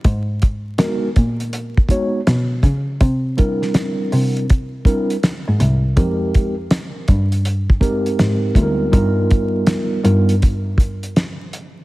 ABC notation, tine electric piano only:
X:1
M:4/4
L:1/8
Q:"Swing 16ths" 1/4=81
K:Cm
V:1 name="Tine electric piano"
z2 [A,_CE_GB] z2 [A,CEG_d] z2 | z [G,CD=EB]3 z [G,CDEB] z2 | [A,CEGB] z4 [A,CEGB]2 [G,_CEF=AB] | [G,=B,^DF^A]3 [G,B,DFA] z4 |]